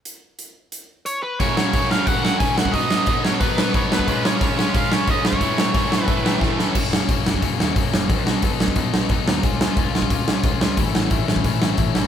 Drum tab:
CC |----------------|----------------|----------------|----------------|
HH |x---x---x---x---|o---o---o---o---|o---o---o---o---|o---o---o---o---|
SD |----------------|--o---o---o---o-|--o---o---o---o-|--o---o---o---o-|
BD |----------------|o---o---o---o--o|o---o---o---o--o|o---o---o---o--o|

CC |----------------|x---------------|----------------|----------------|
HH |o---o---o-------|----o---o---o---|o---o---o---o---|o---o---o---o---|
SD |--o---o---o-o-o-|--o---o---o---o-|--o---o---o---o-|--o---o---o---o-|
BD |o---o---o---o---|o---o--oo---o---|o---o--oo---o---|o---o--oo---o---|

CC |----------------|
HH |o---o---o---o---|
SD |--o---o---o---o-|
BD |o---o--oo---o---|